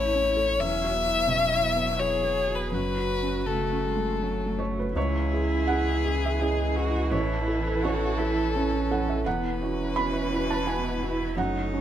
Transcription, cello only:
0, 0, Header, 1, 2, 480
1, 0, Start_track
1, 0, Key_signature, 4, "major"
1, 0, Tempo, 700935
1, 408, Time_signature, 3, 2, 24, 8
1, 1369, Tempo, 734394
1, 4249, Tempo, 707547
1, 7915, End_track
2, 0, Start_track
2, 0, Title_t, "Cello"
2, 0, Program_c, 0, 42
2, 0, Note_on_c, 0, 57, 53
2, 383, Note_off_c, 0, 57, 0
2, 411, Note_on_c, 0, 54, 65
2, 1824, Note_off_c, 0, 54, 0
2, 1851, Note_on_c, 0, 54, 51
2, 2324, Note_off_c, 0, 54, 0
2, 2334, Note_on_c, 0, 57, 49
2, 2572, Note_on_c, 0, 56, 51
2, 2582, Note_off_c, 0, 57, 0
2, 2822, Note_on_c, 0, 54, 49
2, 2831, Note_off_c, 0, 56, 0
2, 3060, Note_on_c, 0, 57, 49
2, 3069, Note_off_c, 0, 54, 0
2, 3286, Note_off_c, 0, 57, 0
2, 3290, Note_on_c, 0, 64, 81
2, 4243, Note_on_c, 0, 68, 64
2, 4253, Note_off_c, 0, 64, 0
2, 4489, Note_on_c, 0, 66, 68
2, 4499, Note_off_c, 0, 68, 0
2, 4726, Note_on_c, 0, 64, 66
2, 4736, Note_off_c, 0, 66, 0
2, 5214, Note_on_c, 0, 66, 67
2, 5224, Note_off_c, 0, 64, 0
2, 5453, Note_on_c, 0, 64, 65
2, 5463, Note_off_c, 0, 66, 0
2, 5688, Note_off_c, 0, 64, 0
2, 5692, Note_on_c, 0, 61, 63
2, 6189, Note_on_c, 0, 59, 59
2, 6199, Note_off_c, 0, 61, 0
2, 6424, Note_on_c, 0, 61, 63
2, 6434, Note_off_c, 0, 59, 0
2, 7137, Note_on_c, 0, 59, 61
2, 7147, Note_off_c, 0, 61, 0
2, 7378, Note_on_c, 0, 64, 64
2, 7388, Note_off_c, 0, 59, 0
2, 7615, Note_on_c, 0, 63, 69
2, 7625, Note_off_c, 0, 64, 0
2, 7915, Note_off_c, 0, 63, 0
2, 7915, End_track
0, 0, End_of_file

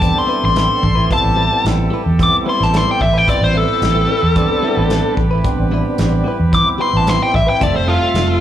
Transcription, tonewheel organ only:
0, 0, Header, 1, 2, 480
1, 0, Start_track
1, 0, Key_signature, 0, "minor"
1, 0, Tempo, 541859
1, 979, Time_signature, 4, 2, 24, 8
1, 7445, End_track
2, 0, Start_track
2, 0, Title_t, "Tonewheel organ"
2, 0, Program_c, 0, 16
2, 10, Note_on_c, 0, 55, 69
2, 12, Note_on_c, 0, 59, 64
2, 22, Note_on_c, 0, 60, 68
2, 23, Note_on_c, 0, 62, 76
2, 757, Note_off_c, 0, 55, 0
2, 759, Note_off_c, 0, 59, 0
2, 764, Note_off_c, 0, 60, 0
2, 764, Note_off_c, 0, 62, 0
2, 982, Note_on_c, 0, 55, 68
2, 987, Note_on_c, 0, 59, 58
2, 992, Note_on_c, 0, 60, 68
2, 995, Note_on_c, 0, 64, 77
2, 1724, Note_off_c, 0, 55, 0
2, 1726, Note_off_c, 0, 59, 0
2, 1729, Note_off_c, 0, 60, 0
2, 1730, Note_off_c, 0, 64, 0
2, 1942, Note_on_c, 0, 55, 71
2, 1948, Note_on_c, 0, 59, 68
2, 1951, Note_on_c, 0, 60, 65
2, 1953, Note_on_c, 0, 64, 79
2, 2684, Note_off_c, 0, 55, 0
2, 2687, Note_off_c, 0, 59, 0
2, 2688, Note_off_c, 0, 60, 0
2, 2689, Note_off_c, 0, 64, 0
2, 2902, Note_on_c, 0, 59, 69
2, 2904, Note_on_c, 0, 55, 71
2, 2907, Note_on_c, 0, 60, 64
2, 2910, Note_on_c, 0, 64, 74
2, 3644, Note_off_c, 0, 59, 0
2, 3645, Note_off_c, 0, 55, 0
2, 3647, Note_off_c, 0, 60, 0
2, 3648, Note_off_c, 0, 64, 0
2, 3854, Note_on_c, 0, 55, 83
2, 3860, Note_on_c, 0, 59, 83
2, 3868, Note_on_c, 0, 60, 74
2, 3868, Note_on_c, 0, 62, 96
2, 4600, Note_off_c, 0, 55, 0
2, 4603, Note_off_c, 0, 59, 0
2, 4608, Note_off_c, 0, 60, 0
2, 4608, Note_off_c, 0, 62, 0
2, 4816, Note_on_c, 0, 55, 83
2, 4817, Note_on_c, 0, 59, 72
2, 4819, Note_on_c, 0, 60, 79
2, 4827, Note_on_c, 0, 62, 88
2, 5562, Note_off_c, 0, 55, 0
2, 5562, Note_off_c, 0, 59, 0
2, 5563, Note_off_c, 0, 60, 0
2, 5567, Note_off_c, 0, 62, 0
2, 5773, Note_on_c, 0, 55, 76
2, 5776, Note_on_c, 0, 59, 64
2, 5780, Note_on_c, 0, 60, 64
2, 5787, Note_on_c, 0, 64, 78
2, 6520, Note_off_c, 0, 55, 0
2, 6522, Note_off_c, 0, 59, 0
2, 6524, Note_off_c, 0, 60, 0
2, 6527, Note_off_c, 0, 64, 0
2, 6732, Note_on_c, 0, 55, 68
2, 6737, Note_on_c, 0, 57, 65
2, 6741, Note_on_c, 0, 60, 61
2, 6743, Note_on_c, 0, 76, 76
2, 7445, Note_off_c, 0, 55, 0
2, 7445, Note_off_c, 0, 57, 0
2, 7445, Note_off_c, 0, 60, 0
2, 7445, Note_off_c, 0, 76, 0
2, 7445, End_track
0, 0, End_of_file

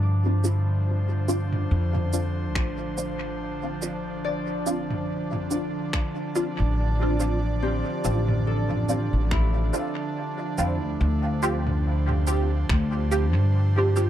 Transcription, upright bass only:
0, 0, Header, 1, 2, 480
1, 0, Start_track
1, 0, Key_signature, -1, "minor"
1, 0, Tempo, 845070
1, 490, Time_signature, 4, 2, 24, 8
1, 8007, End_track
2, 0, Start_track
2, 0, Title_t, "Upright bass"
2, 0, Program_c, 0, 32
2, 0, Note_on_c, 0, 43, 83
2, 950, Note_off_c, 0, 43, 0
2, 972, Note_on_c, 0, 41, 84
2, 1452, Note_off_c, 0, 41, 0
2, 1452, Note_on_c, 0, 33, 89
2, 3481, Note_off_c, 0, 33, 0
2, 3746, Note_on_c, 0, 33, 82
2, 4440, Note_off_c, 0, 33, 0
2, 4571, Note_on_c, 0, 33, 79
2, 5160, Note_off_c, 0, 33, 0
2, 5186, Note_on_c, 0, 33, 77
2, 5510, Note_off_c, 0, 33, 0
2, 6011, Note_on_c, 0, 41, 87
2, 6147, Note_off_c, 0, 41, 0
2, 6147, Note_on_c, 0, 38, 98
2, 6238, Note_off_c, 0, 38, 0
2, 6251, Note_on_c, 0, 38, 99
2, 7190, Note_off_c, 0, 38, 0
2, 7210, Note_on_c, 0, 38, 96
2, 7586, Note_off_c, 0, 38, 0
2, 7586, Note_on_c, 0, 43, 82
2, 8007, Note_off_c, 0, 43, 0
2, 8007, End_track
0, 0, End_of_file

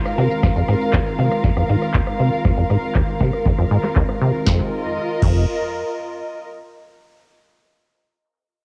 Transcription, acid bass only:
0, 0, Header, 1, 2, 480
1, 0, Start_track
1, 0, Key_signature, -4, "minor"
1, 0, Tempo, 504202
1, 411, Time_signature, 4, 2, 24, 8
1, 8227, End_track
2, 0, Start_track
2, 0, Title_t, "Acid bass"
2, 0, Program_c, 0, 38
2, 170, Note_on_c, 0, 48, 77
2, 271, Note_off_c, 0, 48, 0
2, 410, Note_on_c, 0, 41, 85
2, 477, Note_off_c, 0, 41, 0
2, 532, Note_on_c, 0, 41, 79
2, 597, Note_off_c, 0, 41, 0
2, 651, Note_on_c, 0, 44, 76
2, 718, Note_off_c, 0, 44, 0
2, 891, Note_on_c, 0, 39, 85
2, 958, Note_off_c, 0, 39, 0
2, 1131, Note_on_c, 0, 48, 77
2, 1231, Note_off_c, 0, 48, 0
2, 1371, Note_on_c, 0, 41, 85
2, 1438, Note_off_c, 0, 41, 0
2, 1493, Note_on_c, 0, 41, 76
2, 1558, Note_off_c, 0, 41, 0
2, 1611, Note_on_c, 0, 44, 82
2, 1678, Note_off_c, 0, 44, 0
2, 1851, Note_on_c, 0, 39, 86
2, 1918, Note_off_c, 0, 39, 0
2, 2092, Note_on_c, 0, 48, 78
2, 2192, Note_off_c, 0, 48, 0
2, 2332, Note_on_c, 0, 41, 85
2, 2398, Note_off_c, 0, 41, 0
2, 2453, Note_on_c, 0, 41, 79
2, 2518, Note_off_c, 0, 41, 0
2, 2572, Note_on_c, 0, 44, 76
2, 2638, Note_off_c, 0, 44, 0
2, 2811, Note_on_c, 0, 39, 85
2, 2878, Note_off_c, 0, 39, 0
2, 3052, Note_on_c, 0, 48, 75
2, 3152, Note_off_c, 0, 48, 0
2, 3292, Note_on_c, 0, 41, 87
2, 3358, Note_off_c, 0, 41, 0
2, 3413, Note_on_c, 0, 41, 77
2, 3478, Note_off_c, 0, 41, 0
2, 3532, Note_on_c, 0, 44, 80
2, 3598, Note_off_c, 0, 44, 0
2, 3772, Note_on_c, 0, 39, 83
2, 3838, Note_off_c, 0, 39, 0
2, 4012, Note_on_c, 0, 48, 75
2, 4112, Note_off_c, 0, 48, 0
2, 4251, Note_on_c, 0, 41, 95
2, 4386, Note_off_c, 0, 41, 0
2, 4972, Note_on_c, 0, 41, 92
2, 5194, Note_off_c, 0, 41, 0
2, 8227, End_track
0, 0, End_of_file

